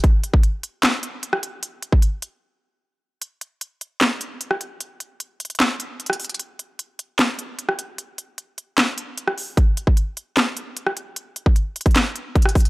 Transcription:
0.04 kick loud
0.04 closed hi-hat medium
0.24 closed hi-hat medium
0.34 kick loud
0.43 closed hi-hat medium
0.63 closed hi-hat medium
0.83 snare loud
0.83 clap medium
0.83 closed hi-hat medium
1.03 closed hi-hat medium
1.23 closed hi-hat medium
1.33 cross-stick medium
1.43 closed hi-hat medium
1.63 closed hi-hat medium
1.82 closed hi-hat medium
1.92 kick loud
2.02 closed hi-hat medium
2.22 closed hi-hat medium
3.22 closed hi-hat medium
3.41 closed hi-hat medium
3.61 closed hi-hat medium
3.81 closed hi-hat medium
4.01 snare loud
4.01 clap medium
4.01 closed hi-hat medium
4.21 closed hi-hat medium
4.41 closed hi-hat medium
4.51 cross-stick medium
4.61 closed hi-hat medium
4.80 closed hi-hat medium
5.00 closed hi-hat medium
5.20 closed hi-hat medium
5.40 closed hi-hat medium
5.45 closed hi-hat medium
5.50 closed hi-hat soft
5.55 closed hi-hat soft
5.60 snare loud
5.60 clap medium
5.60 closed hi-hat medium
5.80 closed hi-hat medium
6.00 closed hi-hat medium
6.06 cross-stick medium
6.06 closed hi-hat medium
6.13 closed hi-hat medium
6.20 closed hi-hat soft
6.20 open hi-hat medium
6.25 closed hi-hat medium
6.29 closed hi-hat medium
6.34 closed hi-hat medium
6.39 closed hi-hat medium
6.59 closed hi-hat medium
6.79 closed hi-hat medium
6.99 closed hi-hat medium
7.19 snare loud
7.19 clap medium
7.19 closed hi-hat medium
7.39 closed hi-hat medium
7.59 closed hi-hat medium
7.69 cross-stick medium
7.79 closed hi-hat medium
7.98 closed hi-hat medium
8.18 closed hi-hat medium
8.38 closed hi-hat medium
8.58 closed hi-hat medium
8.78 snare loud
8.78 clap medium
8.78 closed hi-hat medium
8.98 closed hi-hat medium
9.18 closed hi-hat medium
9.28 cross-stick medium
9.38 open hi-hat medium
9.57 kick loud
9.57 closed hi-hat medium
9.77 closed hi-hat medium
9.87 kick loud
9.97 closed hi-hat medium
10.17 closed hi-hat medium
10.37 snare loud
10.37 clap medium
10.37 closed hi-hat medium
10.57 closed hi-hat medium
10.77 closed hi-hat medium
10.87 cross-stick medium
10.97 closed hi-hat medium
11.16 closed hi-hat medium
11.36 closed hi-hat medium
11.46 kick medium
11.56 closed hi-hat medium
11.76 closed hi-hat medium
11.81 closed hi-hat medium
11.86 kick loud
11.86 closed hi-hat soft
11.91 closed hi-hat soft
11.96 snare loud
11.96 clap medium
11.96 closed hi-hat medium
12.16 closed hi-hat medium
12.35 kick loud
12.35 closed hi-hat soft
12.42 cross-stick medium
12.42 closed hi-hat medium
12.49 closed hi-hat medium
12.55 kick medium
12.55 closed hi-hat soft
12.55 open hi-hat medium
12.60 closed hi-hat medium
12.65 closed hi-hat medium

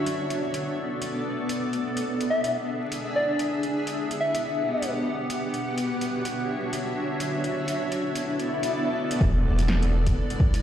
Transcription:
0.00 1.57 B3 medium
0.00 1.57 A4 medium
0.00 1.57 D5 medium
0.06 closed hi-hat soft
0.30 closed hi-hat soft
0.54 closed hi-hat soft
1.02 closed hi-hat soft
1.49 closed hi-hat medium
1.58 3.47 D4 medium
1.58 3.47 G#4 medium
1.58 3.47 E5 medium
1.73 closed hi-hat soft
1.97 closed hi-hat soft
2.21 closed hi-hat soft
2.30 2.56 E5 medium
2.44 closed hi-hat soft
2.92 closed hi-hat soft
3.16 3.41 D5 medium
3.39 closed hi-hat soft
3.49 5.38 B3 medium
3.49 5.38 G4 medium
3.49 5.38 F#5 medium
3.63 closed hi-hat soft
3.87 closed hi-hat soft
4.11 closed hi-hat soft
4.21 4.88 E5 medium
4.35 closed hi-hat soft
4.82 closed hi-hat soft
5.30 closed hi-hat soft
5.40 7.28 D4 medium
5.40 7.28 F#4 medium
5.40 7.28 C#5 medium
5.40 7.28 E5 medium
5.54 closed hi-hat soft
5.78 closed hi-hat soft
6.01 closed hi-hat soft
6.25 closed hi-hat soft
6.73 closed hi-hat medium
7.20 closed hi-hat medium
7.30 9.19 B3 medium
7.30 9.19 A4 medium
7.30 9.19 D5 medium
7.44 closed hi-hat soft
7.68 closed hi-hat soft
7.92 closed hi-hat soft
8.15 closed hi-hat medium
8.26 swell medium
8.39 closed hi-hat soft
8.63 closed hi-hat medium
9.11 closed hi-hat medium
9.20 10.15 E1 loud
9.20 10.62 G#3 medium
9.20 10.62 E4 medium
9.20 10.62 D5 loud
9.20 kick loud
9.20 impact medium
9.59 closed hi-hat medium
9.68 snare loud
9.83 closed hi-hat soft
10.07 kick medium
10.07 closed hi-hat medium
10.30 closed hi-hat soft
10.40 kick loud
10.54 closed hi-hat medium

